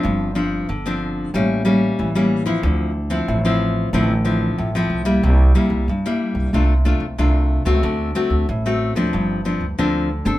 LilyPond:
<<
  \new Staff \with { instrumentName = "Nylon-string guitar" } { \time 4/4 \key d \minor \tempo 4 = 92 << { <f c' d'>8 <f c' d'>8 r16 <f c' d'>8. <g bes cis'>8 <g bes cis'>8. <g bes cis'>8 <f c' e'>16~ | <f c' e'>8 r16 <f c' e'>8 <f c' e'>8. <f c' e'>16 r16 <f c' e'>8. <f c' e'>8 <g bes e'>16~ | <g bes e'>8 <g bes e'>8 r16 <g bes e'>8. <a d' f'>16 r16 <a d' f'>16 r16 <a d' f'>8. <a c' fis'>16~ | <a c' fis'>8 <a c' fis'>8 r16 <a c' fis'>8 <f c' d'>8. <f c' d'>16 r16 <f c' d'>8 r16 <c' d' a'>16 | } \\ { g,4 d4 a,4 e4 | d4 a,4 d4 a,4 | c4 g,4 c4 c4 | d4 a,4 g,4 d4 | } >> }
  \new Staff \with { instrumentName = "Upright bass" } { \clef bass \time 4/4 \key d \minor g,,4 g,,4 a,,4 a,,4 | d,4 a,,4 a,,4 a,,8 c,8 | c,8 r16 c,16 g,8. c,16 c,8. c,16 c,8. cis,16 | d,8 r16 d,16 a,,8. d,16 g,,8. d,16 d,8. g,,16 | }
>>